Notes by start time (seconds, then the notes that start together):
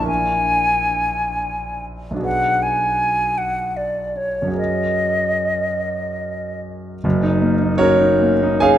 Already playing: A#1 D4
0.00 E4 A#4
0.05 E5 G#5
2.11 B1 D4
2.16 F#4 G#4
2.23 B4 F#5
2.62 G#5
3.38 F#5
3.77 D5
4.17 C#5
4.42 F#2 C#4
4.48 F#4 G#4
4.54 A#4
4.58 D#5
7.04 F#1 F#2
7.23 D#4
7.41 A#3
7.62 D#4
7.78 C#4 F#4 A#4 C#5
8.00 D#4
8.21 A#3
8.43 D#4
8.60 C#4 G#4 C#5 F5 G#5